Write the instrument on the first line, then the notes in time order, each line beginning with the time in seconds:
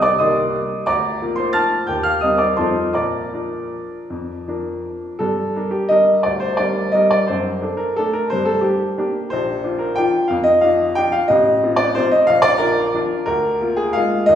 upright piano
Already playing: C2
0.02 D5 D6
0.19 D#3 A#3 G4 D#5 C6 D#6
0.86 D2 D5 A#5 D6
1.22 F3 A#3 A#4
1.36 C5 C6
1.53 A5 F6 A6
1.87 D#2 G5 G6
2.03 F5 F6
2.21 G3 C4 A#4 D#5 D#6
2.37 D5 D6
2.57 F2 F3 D#4 A4 C5 A5 C6
2.93 A#2 D5 A#5 D6
3.33 F3 D4 A#4
4.10 F2
4.48 F3 D4 A#4
5.19 G2 A4
5.56 D4 A#4
5.71 G4
5.89 G3 D4 A#4 D#5
6.23 D2 D5
6.40 C5
6.57 G3 D4 A#4 D5
6.92 G3 D4 A#4 D#5
7.11 D5
7.27 F#2 C5
7.62 D4 A4
7.77 A#4
7.96 A3 D4 A4
8.13 A#4
8.30 G2 C5
8.45 A4
8.61 D4 G4
8.98 A#3 D4 G4
9.30 A#1 C5
9.64 D4 F4
9.79 A#4
9.96 F3 D4 F4 G5
10.28 F2 F5
10.44 D#5
10.61 F3 D4 F4 F5
10.95 F3 D4 F4 G5
11.12 F5
11.28 A1 D#5
11.63 C4 F4
11.76 D5
11.95 F3 C4 F4 C5
12.11 D#5
12.27 A#1 F5
12.42 D5
12.58 D4 F4 A#4
12.94 F3 D4 F4
13.26 D2 A#4
13.60 A#3 F4
13.76 G#4
13.93 G#3 A#3 F4 F5
14.26 D#2 D#5